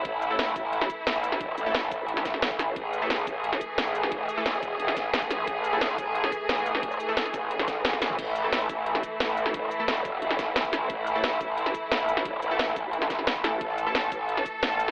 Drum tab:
CC |----------------|----------------|----------------|----------------|
HH |x-x-x-x-x-x-x-x-|x-x-x-x-x-x-x-x-|x-x-x-x-x-x-x-x-|x-x-x-x-x-x-x-x-|
SH |--x--xx--xx--xx-|--x--xx--xx--xx-|--x--xx--xx--xx-|--x--xx--xx--xx-|
SD |----o----o--o--o|----o----oooo-o-|----o----o--o--o|----o----oo-o-o-|
T2 |----------------|----------------|----------------|----------------|
BD |o-----o---o-----|o-----o---o--o--|o-----o---o-----|o-----o---o--o--|

CC |----------------|----------------|x---------------|----------------|
HH |x-x-x-x-x-x-x-x-|x-x-x-x-x-x-x-x-|x-x-x-x-x-x-x-x-|x-x-x-x-x-x-x-x-|
SH |--x--xx--xx--xx-|-xx--xx--xx--xx-|--x--xx--xx--xx-|--x--xx--xx--xx-|
SD |----o----o--o--o|----oo---oo-ooo-|----o----o--o--o|----o----oo-o-o-|
T2 |----------------|---------------o|----------------|----------------|
BD |o-----o---o-----|o-----o---o--o--|o-----o---o-----|o-----o---o--o--|

CC |----------------|----------------|----------------|
HH |x-x-x-x-x-x-x-x-|x-x-x-x-x-x-x-x-|x-x-x-x-x-x-x-x-|
SH |--x--xx--xx--xx-|--x--xx--xx--xx-|--x--xx--xx--xx-|
SD |----o----o--o--o|----o----oooo-o-|----o----o--o---|
T2 |----------------|----------------|----------------|
BD |o-----o---o-----|o-----o---o--o--|o-----o---o-----|